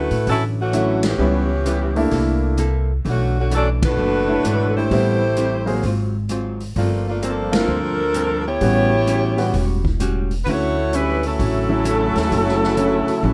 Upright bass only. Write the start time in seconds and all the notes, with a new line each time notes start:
0.11 A2
0.27 A1
1.19 C#2
2.12 C2
3.05 B1
3.97 F#1
4.44 G#1
4.91 A1
5.83 G#1
6.76 G1
7.67 D2
8.61 A1
9.54 E1
10.46 D2
11.39 A1
12.15 D#2
12.32 F#1
13.08 muted upright bass stroke
13.23 A1